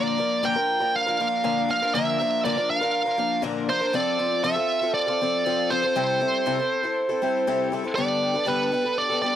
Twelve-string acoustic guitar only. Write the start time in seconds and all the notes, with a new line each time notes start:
Already playing: A#2 D3 F3 A#3 D4 A#4
0.18 F3 A#3 D4 A#4
0.43 A#2 D3 F3 A#3 D4 A#4
0.56 F3 A#3 D4 A#4
0.80 F3 A#3 D4 A#4
1.07 F3 A#3 D4 A#4
1.20 F3 A#3 D4 A#4
1.44 A#2 D3 F3 A#3 D4 A#4
1.68 F3 A#3 D4 A#4
1.82 F3 A#3 D4 A#4
1.94 A#2 D3 F3 A#3 D4 A#4
2.19 F3 A#3 D4 A#4
2.45 A#2 D3 F3 A#3 D4 A#4
2.57 F3 A#3 D4 A#4
2.81 F3 A#3 D4 A#4
3.06 F3 A#3 D4 A#4
3.17 F3 A#3 D4 A#4
3.42 A#2 D3 F3 A#3 D4 A#4
3.69 F3 A#3 D4 A#4
3.81 F3 A#3 D4 A#4
3.93 F3 C4 F4 A4
4.19 F3 C4 F4 A4
4.43 F3 C4 F4 A4
4.56 C4 F4 A4
4.82 C4 F4 A4
5.07 C4 F4 A4
5.21 F3 C4 F4 A4
5.46 F3 C4 F4 A4
5.70 F3 C4 F4 A4
5.82 C4 F4 A4
5.95 C3 G3 C4 E4 A4
6.21 G3 C4 E4 A4
6.46 C3 G3 C4 E4 A4
6.58 C4 E4 A4
6.83 C4 E4 A4
7.09 C4 E4 A4
7.22 G3 C4 E4 A4
7.47 C3 G3 C4 E4 A4
7.72 G3 C4 E4 A4
7.84 C4 E4 A4
7.97 G2 D3 G3 B3 D4 A4
8.34 G3 B3 D4 A4
8.46 G2 D3 G3 B3 D4 A4
8.72 G3 B3 D4 A4
8.84 G3 B3 D4 A4
9.10 G3 B3 D4 A4
9.22 G3 B3 D4 A4